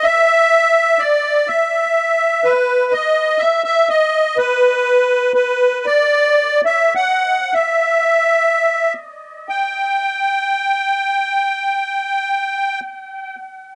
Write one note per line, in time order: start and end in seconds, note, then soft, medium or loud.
0.04 1.01 E5 medium
0.99 1.48 D5 medium
1.47 2.52 E5 medium
2.44 2.93 B4 medium
2.92 3.41 D#5 medium
3.38 3.63 E5 medium
3.64 3.89 E5 medium
3.89 4.38 D#5 medium
4.37 5.32 B4 medium
5.34 5.86 B4 medium
5.86 6.61 D5 medium
6.65 6.94 E5 medium
6.95 7.54 F#5 medium
7.53 8.93 E5 medium
9.49 12.80 G5 medium